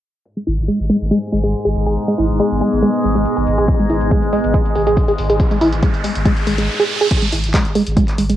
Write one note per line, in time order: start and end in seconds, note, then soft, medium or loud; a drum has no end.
0.25 6.68 G#2 medium
0.25 6.68 G#3 medium
0.25 6.68 B3 medium
0.25 closed hi-hat medium
0.37 0.43 G#3 medium
0.37 closed hi-hat medium
0.41 6.68 D#5 medium
0.47 0.58 G#1 medium
0.47 0.54 E4 medium
0.47 open hi-hat loud
0.58 0.68 G#1 medium
0.58 6.68 G#5 medium
0.58 closed hi-hat medium
0.67 0.79 G#3 medium
0.67 6.68 G#4 medium
0.67 closed hi-hat medium
0.80 0.90 G#1 medium
0.80 closed hi-hat medium
0.90 0.97 G#3 medium
0.90 open hi-hat loud
1.01 1.11 G#1 medium
1.01 closed hi-hat medium
1.11 1.18 G#3 loud
1.11 closed hi-hat medium
1.23 closed hi-hat medium
1.32 1.43 G#1 medium
1.32 1.39 G#3 medium
1.32 open hi-hat loud
1.44 1.54 G#1 medium
1.44 1.53 G#3 medium
1.44 closed hi-hat medium
1.54 closed hi-hat medium
1.65 1.75 G#1 medium
1.65 1.69 G#4 medium
1.65 closed hi-hat medium
1.75 1.86 G#1 loud
1.75 open hi-hat loud
1.87 1.97 G#1 medium
1.87 1.93 G#4 medium
1.87 closed hi-hat soft
1.97 closed hi-hat medium
2.08 2.14 G#3 medium
2.08 closed hi-hat soft
2.18 2.29 G#1 loud
2.18 2.25 E4 medium
2.18 open hi-hat loud
2.29 2.39 G#1 medium
2.29 closed hi-hat medium
2.40 2.50 G#3 loud
2.40 closed hi-hat medium
2.51 2.61 G#1 medium
2.51 closed hi-hat medium
2.61 2.68 G#3 loud
2.61 open hi-hat loud
2.72 2.82 G#1 medium
2.72 closed hi-hat medium
2.83 2.89 G#3 loud
2.83 closed hi-hat medium
2.94 closed hi-hat medium
3.04 3.15 G#1 loud
3.04 3.11 G#3 medium
3.04 open hi-hat loud
3.15 3.25 G#1 medium
3.15 3.25 G#3 medium
3.15 closed hi-hat medium
3.25 closed hi-hat medium
3.37 3.46 G#1 medium
3.37 3.40 G#4 medium
3.37 closed hi-hat medium
3.47 3.57 G#1 loud
3.47 open hi-hat loud
3.58 3.68 G#1 medium
3.58 3.64 G#4 medium
3.58 closed hi-hat medium
3.68 kick loud
3.68 closed hi-hat medium
3.68 riser medium
3.79 3.86 G#3 medium
3.79 closed hi-hat soft
3.90 4.00 G#1 loud
3.90 3.97 E4 medium
3.90 open hi-hat loud
4.01 4.11 G#1 medium
4.01 closed hi-hat medium
4.11 4.22 G#3 loud
4.11 kick loud
4.11 closed hi-hat medium
4.22 4.32 G#1 medium
4.22 closed hi-hat medium
4.32 4.39 G#3 loud
4.32 open hi-hat loud
4.44 4.54 G#1 medium
4.44 closed hi-hat medium
4.54 4.61 G#3 loud
4.54 kick loud
4.54 closed hi-hat medium
4.65 closed hi-hat medium
4.75 4.86 G#1 loud
4.75 4.82 G#3 medium
4.75 open hi-hat loud
4.87 4.97 G#1 medium
4.87 4.96 G#3 medium
4.87 closed hi-hat medium
4.97 kick loud
4.97 closed hi-hat medium
5.08 5.18 G#1 medium
5.08 5.12 G#4 medium
5.08 closed hi-hat medium
5.18 5.29 G#1 loud
5.18 open hi-hat loud
5.30 5.40 G#1 medium
5.30 5.36 G#4 medium
5.30 closed hi-hat medium
5.40 kick loud
5.40 closed hi-hat medium
5.51 5.57 G#3 medium
5.51 closed hi-hat soft
5.61 5.72 G#1 loud
5.61 5.68 E4 medium
5.61 open hi-hat loud
5.72 5.82 G#1 medium
5.72 closed hi-hat soft
5.83 5.93 G#3 loud
5.83 kick loud
5.83 closed hi-hat medium
5.94 6.04 G#1 medium
5.94 closed hi-hat medium
6.04 6.11 G#3 loud
6.04 open hi-hat loud
6.15 6.25 G#1 medium
6.15 closed hi-hat medium
6.25 6.32 G#3 loud
6.25 kick loud
6.25 closed hi-hat medium
6.37 closed hi-hat soft
6.47 6.58 G#1 loud
6.47 6.54 G#3 medium
6.47 open hi-hat loud
6.58 6.68 G#1 medium
6.58 6.67 G#3 medium
6.58 closed hi-hat medium
6.80 6.83 G#4 medium
7.01 7.07 G#4 medium
7.11 kick loud
7.11 closed hi-hat medium
7.11 crash loud
7.22 7.29 G#3 medium
7.22 closed hi-hat medium
7.33 7.43 G#1 medium
7.33 7.40 E4 medium
7.33 open hi-hat loud
7.44 7.54 G#1 medium
7.44 closed hi-hat medium
7.54 7.64 G#3 loud
7.54 kick loud
7.54 clap loud
7.54 closed hi-hat medium
7.65 7.75 G#1 medium
7.65 closed hi-hat medium
7.75 7.82 G#3 loud
7.75 open hi-hat loud
7.87 7.97 G#1 medium
7.87 closed hi-hat medium
7.97 8.04 G#3 loud
7.97 kick loud
7.97 closed hi-hat medium
8.08 clap soft
8.08 closed hi-hat medium
8.18 8.29 G#1 loud
8.18 8.25 G#3 medium
8.18 open hi-hat loud
8.30 8.37 G#1 medium
8.30 8.37 G#3 medium
8.30 closed hi-hat medium